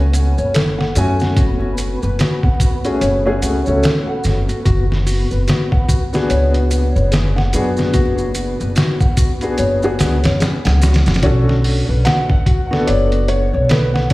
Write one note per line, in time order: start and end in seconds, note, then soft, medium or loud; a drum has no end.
0.00 0.33 C#2 medium
0.00 0.91 A3 medium
0.00 11.25 B3 medium
0.00 0.92 C#4 medium
0.00 0.12 F#4 medium
0.00 0.92 F#4 medium
0.00 11.25 B4 medium
0.00 0.92 G#5 medium
0.13 0.35 F#5 medium
0.13 closed hi-hat medium
0.13 maracas medium
0.38 0.93 F#1 medium
0.38 0.54 C#5 medium
0.38 maracas soft
0.54 0.78 A4 medium
0.54 snare loud
0.54 closed hi-hat medium
0.54 maracas medium
0.79 0.94 F#5 medium
0.79 snare soft
0.95 1.33 F#2 medium
0.95 2.78 A3 medium
0.95 2.79 C#4 medium
0.95 1.09 F#4 medium
0.95 2.79 F#4 medium
0.95 2.79 G#5 loud
0.95 closed hi-hat medium
0.95 maracas medium
1.20 1.29 F#4 medium
1.20 snare soft
1.20 maracas soft
1.37 1.98 F#1 medium
1.37 1.59 F#4 loud
1.37 kick medium
1.37 closed hi-hat medium
1.37 maracas soft
1.61 1.77 F#4 medium
1.78 2.00 F#4 medium
1.78 closed hi-hat medium
1.78 maracas medium
2.02 2.17 F#1 medium
2.02 2.17 B4 medium
2.02 maracas soft
2.19 2.41 F#4 medium
2.19 snare loud
2.19 closed hi-hat medium
2.19 maracas soft
2.43 2.58 F#5 medium
2.43 kick medium
2.60 2.74 F#4 medium
2.60 kick medium
2.60 closed hi-hat medium
2.60 maracas medium
2.84 3.20 A3 medium
2.84 3.20 C#4 medium
2.84 2.94 F#4 medium
2.84 3.20 F#4 medium
2.84 3.20 G#4 medium
2.84 closed hi-hat soft
2.84 maracas soft
3.01 3.38 F#1 medium
3.01 3.23 C#5 medium
3.01 closed hi-hat medium
3.01 maracas soft
3.25 3.61 A3 loud
3.25 3.61 C#4 medium
3.25 3.41 F#4 medium
3.25 3.61 F#4 medium
3.25 3.61 G#4 loud
3.42 3.64 C#2 medium
3.42 3.64 F#5 medium
3.42 closed hi-hat medium
3.42 maracas medium
3.66 3.81 C#2 medium
3.66 4.63 A3 medium
3.66 4.64 C#4 medium
3.66 4.64 F#4 medium
3.66 4.64 A4 medium
3.66 3.82 C#5 medium
3.66 maracas soft
3.83 4.06 A4 medium
3.83 snare loud
3.83 closed hi-hat medium
3.83 maracas soft
4.07 4.22 F#5 loud
4.24 4.46 F#1 medium
4.24 4.38 F#4 medium
4.24 snare soft
4.24 closed hi-hat medium
4.24 maracas medium
4.49 4.58 F#4 medium
4.49 closed hi-hat soft
4.49 maracas soft
4.65 5.26 F#1 loud
4.65 4.87 F#4 medium
4.65 kick medium
4.65 closed hi-hat medium
4.65 maracas soft
4.90 5.05 F#4 medium
4.90 snare soft
5.06 5.28 F#4 medium
5.06 open hi-hat medium
5.06 maracas medium
5.31 5.46 F#1 medium
5.31 5.46 B4 medium
5.31 maracas soft
5.48 5.69 F#4 medium
5.48 snare loud
5.48 closed hi-hat medium
5.48 maracas soft
5.72 5.87 F#5 loud
5.72 kick medium
5.88 6.02 F#4 medium
5.88 kick medium
5.88 closed hi-hat medium
5.88 maracas medium
6.13 7.49 B3 medium
6.13 7.49 D4 medium
6.13 6.22 F#4 medium
6.13 7.50 F#4 medium
6.13 7.50 G#4 loud
6.13 snare medium
6.13 maracas soft
6.29 6.91 C#2 medium
6.29 6.51 C#5 medium
6.29 closed hi-hat medium
6.29 maracas medium
6.54 6.70 F#4 medium
6.54 closed hi-hat soft
6.70 6.93 F#5 medium
6.70 closed hi-hat medium
6.70 maracas medium
6.95 7.50 F#1 medium
6.95 7.11 C#5 medium
6.95 maracas soft
7.12 7.35 G#4 medium
7.12 snare loud
7.12 closed hi-hat medium
7.12 maracas soft
7.36 7.51 F#5 loud
7.36 snare soft
7.53 7.91 F#2 medium
7.53 9.36 B3 medium
7.53 9.36 D4 medium
7.53 7.67 F#4 medium
7.53 9.37 F#4 medium
7.53 9.37 G#4 loud
7.53 closed hi-hat medium
7.53 maracas medium
7.77 7.87 F#4 medium
7.77 snare soft
7.77 maracas soft
7.94 8.55 F#1 medium
7.94 8.16 F#4 loud
7.94 kick loud
7.94 closed hi-hat medium
7.94 maracas soft
8.18 8.34 F#4 medium
8.18 maracas soft
8.35 8.57 F#4 medium
8.35 closed hi-hat medium
8.35 maracas medium
8.59 8.75 F#1 medium
8.59 8.75 B4 medium
8.59 maracas soft
8.76 8.98 F#4 medium
8.76 snare loud
8.76 closed hi-hat medium
8.76 maracas soft
9.00 9.16 F#5 medium
9.00 kick medium
9.00 maracas soft
9.17 9.31 F#4 medium
9.17 kick medium
9.17 closed hi-hat medium
9.17 maracas medium
9.41 9.77 B3 medium
9.41 9.77 D4 medium
9.41 9.51 F#4 medium
9.41 9.77 F#4 medium
9.41 9.78 G#4 medium
9.41 closed hi-hat soft
9.41 maracas soft
9.58 9.96 F#1 medium
9.58 9.80 C#5 medium
9.58 closed hi-hat medium
9.58 maracas medium
9.82 10.18 B3 medium
9.82 10.19 D4 medium
9.82 9.99 F#4 medium
9.82 10.19 F#4 medium
9.82 10.19 G#4 loud
9.82 maracas soft
9.99 10.21 C#2 medium
9.99 10.22 F#5 medium
9.99 snare loud
9.99 closed hi-hat medium
9.99 maracas loud
10.24 10.39 F#1 medium
10.24 10.40 C#5 medium
10.24 snare loud
10.24 closed hi-hat medium
10.24 maracas soft
10.40 10.64 G#4 medium
10.40 snare loud
10.40 closed hi-hat medium
10.40 maracas soft
10.65 11.01 C#2 loud
10.65 10.80 F#5 loud
10.65 snare loud
10.65 closed hi-hat medium
10.82 10.96 F#4 medium
10.82 snare medium
10.82 closed hi-hat medium
10.82 maracas medium
10.94 snare medium
10.94 closed hi-hat medium
11.06 11.21 F#1 medium
11.06 11.16 F#4 medium
11.06 snare medium
11.06 closed hi-hat medium
11.06 maracas soft
11.14 snare medium
11.14 closed hi-hat medium
11.23 11.84 B1 medium
11.23 12.46 C#4 medium
11.23 12.46 D4 medium
11.23 11.45 F#4 loud
11.23 12.47 F#4 medium
11.23 12.47 A4 loud
11.23 kick loud
11.23 closed hi-hat medium
11.48 11.63 F#4 medium
11.48 snare soft
11.64 11.86 F#4 medium
11.64 open hi-hat medium
11.89 12.03 B1 medium
11.89 12.04 B4 medium
12.05 12.27 F#4 medium
12.05 12.90 F#5 loud
12.05 snare loud
12.05 closed hi-hat medium
12.29 12.44 F#5 loud
12.29 kick loud
12.46 12.60 F#4 medium
12.46 kick medium
12.46 closed hi-hat medium
12.70 14.06 B3 medium
12.70 14.07 D4 medium
12.70 12.80 F#4 medium
12.70 14.07 F#4 medium
12.70 14.08 A4 loud
12.70 snare medium
12.87 13.49 F#1 medium
12.87 13.09 C#5 medium
12.87 13.29 D5 medium
12.87 closed hi-hat medium
13.11 13.27 F#4 medium
13.11 closed hi-hat soft
13.28 13.71 C#5 medium
13.28 13.50 F#5 medium
13.28 closed hi-hat medium
13.53 14.08 B1 medium
13.53 13.69 C#5 medium
13.69 13.93 A4 medium
13.69 14.12 B4 loud
13.69 snare loud
13.69 closed hi-hat medium
13.94 14.09 F#5 loud
13.94 snare medium
14.10 closed hi-hat medium